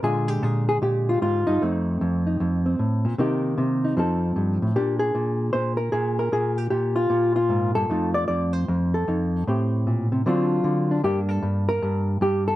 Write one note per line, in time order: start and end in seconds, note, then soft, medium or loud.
0.03 0.41 A#2 medium
0.03 1.59 D3 soft
0.03 1.61 G#3 soft
0.03 0.28 F4 soft
0.03 0.42 G#4 loud
0.28 0.81 G4 medium
0.42 0.81 A#2 medium
0.42 0.68 G#4 medium
0.69 0.77 G#4 loud
0.82 1.21 A#2 medium
0.82 1.46 G4 medium
1.09 1.21 F4 medium
1.22 1.47 G#2 medium
1.22 1.61 F4 medium
1.47 1.61 G2 medium
1.47 2.26 D#4 medium
1.62 2.00 F2 medium
1.62 3.17 A3 soft
1.62 2.65 C4 soft
2.01 2.39 F2 medium
2.27 3.17 D#4 soft
2.40 2.79 F2 medium
2.66 3.17 C4 soft
2.79 3.05 A2 medium
3.05 3.18 A#2 medium
3.18 3.56 C3 medium
3.18 3.97 D#3 medium
3.18 3.96 A#3 medium
3.18 3.83 D#4 medium
3.18 3.96 G4 medium
3.58 3.95 C3 medium
3.85 3.96 D#4 medium
3.97 4.36 F2 medium
3.97 4.76 F3 medium
3.97 4.74 C4 medium
3.97 4.74 D#4 medium
3.97 4.75 A4 medium
4.36 4.61 G2 medium
4.62 4.76 A2 medium
4.76 5.14 A#2 medium
4.76 6.31 A#3 soft
4.76 6.32 D4 soft
4.76 4.99 G4 medium
4.99 5.79 G#4 medium
5.15 5.54 A#2 medium
5.53 5.92 A#2 medium
5.53 5.77 C5 medium
5.77 6.17 A#4 medium
5.92 6.31 A#2 medium
5.92 6.32 G#4 medium
6.19 6.72 A#4 medium
6.32 6.70 A#2 medium
6.32 6.58 G#4 medium
6.58 6.69 G4 medium
6.70 7.09 A#2 medium
6.70 7.36 G4 medium
6.96 7.35 F4 medium
7.10 7.89 A#2 medium
7.36 7.75 F4 medium
7.49 7.75 G#2 medium
7.75 7.89 G2 medium
7.75 8.14 A4 medium
7.90 8.28 F2 medium
7.90 9.45 A3 soft
7.90 9.07 D#4 soft
7.90 8.94 F4 soft
8.14 8.27 D5 loud
8.28 8.67 F2 medium
8.28 8.53 D5 loud
8.53 9.32 C5 loud
8.68 9.07 F2 medium
8.94 10.12 A4 medium
9.08 9.47 F2 medium
9.08 9.45 D#4 soft
9.47 10.24 A2 medium
9.47 10.24 C4 soft
9.47 10.25 G4 soft
9.87 10.12 A#2 medium
10.12 10.25 C3 soft
10.26 10.63 D3 medium
10.26 11.02 F#3 medium
10.26 11.03 C4 medium
10.26 10.90 D4 medium
10.26 11.04 F4 medium
10.64 11.02 D3 medium
10.91 11.02 D4 medium
11.04 11.41 G2 medium
11.04 12.56 G3 soft
11.04 12.56 A#3 soft
11.04 12.56 D4 soft
11.04 11.19 G4 loud
11.29 11.68 A4 loud
11.43 11.81 G2 medium
11.69 12.21 A#4 loud
11.82 12.20 G2 medium
12.21 12.56 G2 medium
12.21 12.47 G4 loud
12.48 12.56 A4 medium